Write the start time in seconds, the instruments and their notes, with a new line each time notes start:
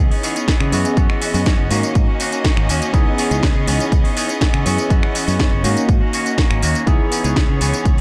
Already playing: clean electric guitar E3 B3 C#4, tine electric piano B3 D#4 E4 G#4, string section C#4 D#5
0.11 clean electric guitar B3 C#4 G#4, open hi-hat
0.23 clean electric guitar E3 B3 C#4 G#4, open hi-hat, tambourine
0.35 clean electric guitar B3 C#4 G#4, closed hi-hat, tambourine
0.47 clean electric guitar E3 B3 C#4 G#4, kick, snare, closed hi-hat, tambourine
0.60 fingered electric bass C#3, finger snap
0.71 fingered electric bass F#2, clean electric guitar E3 B3 C#4 F#4, tine electric piano B3 C#4 E4 G#4, open hi-hat, tambourine
0.85 closed hi-hat, tambourine
0.97 fingered electric bass F#2, clean electric guitar E3 B3 C#4 F#4, kick, closed hi-hat, tambourine
1.10 finger snap
1.21 clean electric guitar E3 B3 C#4 F#4, open hi-hat, tambourine
1.34 fingered electric bass F#2, clean electric guitar B3 C#4 F#4, open hi-hat, tambourine
1.46 clean electric guitar E3 B3 C#4 F#4, kick, snare, closed hi-hat, tambourine
1.58 fingered electric bass F#1, clean electric guitar B3 C#4 F#4
1.70 fingered electric bass G#2, clean electric guitar D#3 A#3 C#4 F#4, tine electric piano A#3 C#4 D#4 F#4, open hi-hat, tambourine
1.83 closed hi-hat, tambourine
1.95 fingered electric bass G#2, kick, closed hi-hat, tambourine
2.07 clean electric guitar A#3 C#4 F#4
2.19 clean electric guitar D#3 A#3 C#4 F#4, open hi-hat, tambourine
2.32 clean electric guitar A#3 C#4 F#4, closed hi-hat, tambourine
2.44 clean electric guitar D#3 A#3 C#4 F#4, kick, snare, closed hi-hat, tambourine
2.57 fingered electric bass G#1, finger snap
2.69 fingered electric bass D#2, clean electric guitar D#3 A#3 C#4 F#4, open hi-hat, tambourine
2.82 closed hi-hat, tambourine
2.93 fingered electric bass C#2, clean electric guitar E3 B3 C#4 G#4, tine electric piano B3 D#4 E4 G#4, kick, closed hi-hat, tambourine
3.18 clean electric guitar E3 B3 C#4 G#4, open hi-hat, tambourine
3.30 fingered electric bass C#2, clean electric guitar B3 C#4 G#4, closed hi-hat, tambourine
3.42 clean electric guitar E3 B3 C#4 G#4, kick, snare, closed hi-hat, tambourine
3.55 fingered electric bass C#3, clean electric guitar B3 C#4 G#4
3.67 fingered electric bass C#2, clean electric guitar E3 B3 C#4 G#4, open hi-hat, tambourine
3.80 closed hi-hat, tambourine
3.92 fingered electric bass C#2, kick, closed hi-hat, tambourine
4.04 clean electric guitar B3 C#4 G#4, open hi-hat
4.16 clean electric guitar E3 B3 C#4 G#4, open hi-hat, tambourine
4.28 clean electric guitar B3 C#4 G#4, closed hi-hat, tambourine
4.41 clean electric guitar E3 B3 C#4 G#4, kick, snare, closed hi-hat, tambourine
4.54 fingered electric bass C#3, finger snap
4.65 fingered electric bass F#2, clean electric guitar E3 B3 C#4 F#4, tine electric piano B3 C#4 E4 G#4, open hi-hat, tambourine
4.78 closed hi-hat, tambourine
4.90 fingered electric bass F#2, clean electric guitar E3 B3 C#4 F#4, kick, closed hi-hat, tambourine
5.03 finger snap
5.14 clean electric guitar E3 B3 C#4 F#4, open hi-hat, tambourine
5.27 fingered electric bass F#2, clean electric guitar B3 C#4 F#4, open hi-hat, tambourine
5.39 clean electric guitar E3 B3 C#4 F#4, kick, snare, closed hi-hat, tambourine
5.51 fingered electric bass F#1, clean electric guitar B3 C#4 F#4
5.63 fingered electric bass G#2, clean electric guitar D#3 A#3 C#4 F#4, tine electric piano A#3 C#4 D#4 F#4, open hi-hat, tambourine
5.77 closed hi-hat, tambourine
5.89 fingered electric bass G#2, kick, closed hi-hat, tambourine
6.01 clean electric guitar A#3 C#4 F#4
6.13 clean electric guitar D#3 A#3 C#4 F#4, open hi-hat, tambourine
6.25 clean electric guitar A#3 C#4 F#4, closed hi-hat, tambourine
6.37 clean electric guitar D#3 A#3 C#4 F#4, kick, snare, closed hi-hat, tambourine
6.51 fingered electric bass G#1, finger snap
6.62 fingered electric bass D#2, clean electric guitar D#3 A#3 C#4 F#4, open hi-hat, tambourine
6.75 closed hi-hat, tambourine
6.87 fingered electric bass C#2, clean electric guitar E3 B3 C#4 G#4, tine electric piano B3 D#4 E4 G#4, string section C#4 C#5, kick, closed hi-hat, tambourine
7.11 clean electric guitar E3 B3 C#4 G#4, open hi-hat, tambourine
7.24 fingered electric bass C#2, clean electric guitar B3 C#4 G#4, closed hi-hat, tambourine
7.36 clean electric guitar E3 B3 C#4 G#4, kick, snare, closed hi-hat, tambourine
7.48 fingered electric bass C#3, clean electric guitar B3 C#4 G#4
7.60 fingered electric bass C#2, clean electric guitar E3 B3 C#4 G#4, open hi-hat, tambourine
7.74 closed hi-hat, tambourine
7.85 fingered electric bass C#2, kick, closed hi-hat, tambourine
7.97 clean electric guitar G#4